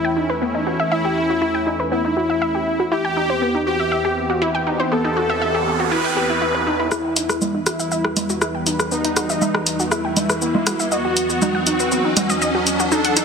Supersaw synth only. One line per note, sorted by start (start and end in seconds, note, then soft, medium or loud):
0.00 0.32 E4 loud
0.92 1.82 E4 loud
1.92 2.82 E4 medium
2.92 3.57 G4 loud
3.67 4.32 G4 medium
4.92 5.82 A4 loud
5.92 6.82 B4 medium
6.92 7.57 E4 loud
7.67 8.32 E4 medium
8.92 9.82 D#4 loud
9.92 10.82 E4 loud
10.92 11.57 F#4 loud
11.67 12.32 F#4 loud
12.92 13.25 A4 loud